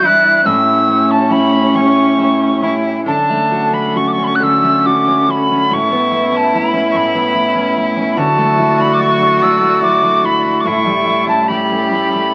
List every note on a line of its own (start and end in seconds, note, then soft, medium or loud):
0.00 0.46 E2 medium
0.00 0.44 G3 medium
0.00 0.54 D4 medium
0.00 0.44 E4 medium
0.00 0.45 E4 medium
0.00 0.43 D5 medium
0.04 0.45 E4 medium
0.04 0.47 F#6 loud
0.45 3.07 A2 medium
0.45 3.05 A3 medium
0.45 2.64 C#4 medium
0.45 1.29 E4 soft
0.45 3.06 G4 medium
0.45 3.05 C#5 medium
0.45 1.13 E6 medium
0.88 1.75 C#4 medium
1.11 1.33 A5 medium
1.30 2.17 E4 medium
1.30 1.77 B5 medium
1.75 2.62 C#4 medium
1.75 2.74 C#6 medium
2.19 3.16 E4 medium
2.62 3.72 C#4 soft
2.62 3.05 E4 medium
3.05 4.39 D3 soft
3.05 5.69 D3 medium
3.05 5.70 F#3 medium
3.05 3.97 D4 medium
3.05 5.70 A4 medium
3.05 3.75 A5 medium
3.30 4.63 A3 soft
3.51 3.94 F#4 medium
3.72 4.17 C#4 soft
3.72 3.98 B5 medium
3.95 5.72 C#4 medium
3.95 4.84 F#4 medium
3.95 4.09 C#6 medium
4.08 4.14 D6 soft
4.13 4.25 C#6 medium
4.18 5.07 C#4 soft
4.24 4.28 B5 soft
4.24 4.37 C#6 medium
4.35 4.45 F#6 medium
4.40 5.79 D3 medium
4.40 4.88 E6 medium
4.64 5.91 A3 soft
4.86 5.27 F#4 medium
4.86 5.32 D6 medium
5.08 5.50 C#4 medium
5.28 5.80 F#4 medium
5.28 5.75 B5 medium
5.51 5.94 C#4 soft
5.70 6.93 A2 medium
5.70 8.16 A3 medium
5.70 8.16 C#4 medium
5.70 8.19 E4 medium
5.70 8.16 B4 medium
5.70 6.38 C#6 medium
5.91 7.13 B3 medium
6.11 6.54 E4 medium
6.31 6.72 C#4 medium
6.37 6.59 A5 medium
6.54 7.34 E4 medium
6.54 6.91 B5 medium
6.73 7.54 C#4 soft
6.91 8.17 A2 medium
6.91 6.98 C#6 medium
6.97 7.87 B5 medium
7.15 8.26 B3 medium
7.35 7.76 E4 soft
7.55 7.95 C#4 medium
7.77 8.58 E4 medium
7.96 8.26 C#4 soft
8.12 8.19 B5 medium
8.17 9.40 D3 medium
8.17 10.64 F#3 medium
8.17 10.64 E4 medium
8.17 10.68 F#4 loud
8.17 10.64 D5 medium
8.17 8.82 A5 medium
8.38 9.61 A3 medium
8.58 8.99 E4 medium
8.79 9.18 D4 medium
8.79 8.95 B5 medium
8.94 9.03 D6 medium
9.00 9.81 E4 medium
9.00 9.44 C#6 medium
9.20 10.01 D4 medium
9.42 10.65 D3 medium
9.42 9.82 E6 medium
9.61 10.86 A3 soft
9.82 10.24 E4 soft
9.82 10.27 D6 loud
10.03 10.43 D4 medium
10.24 11.06 E4 medium
10.24 10.62 B5 medium
10.44 10.74 D4 soft
10.61 10.67 D6 medium
10.65 11.92 A2 medium
10.65 12.34 G3 medium
10.65 12.34 C#4 medium
10.65 11.48 E4 medium
10.65 12.34 A4 medium
10.65 11.28 C#6 medium
10.86 12.13 G3 medium
11.07 11.49 E4 medium
11.27 11.70 C#4 soft
11.27 11.50 A5 medium
11.48 12.34 E4 medium
11.48 12.34 G4 medium
11.48 11.91 B5 medium
11.72 12.34 C#4 soft
11.92 12.34 A2 medium
11.92 12.34 B5 medium
12.14 12.34 G3 soft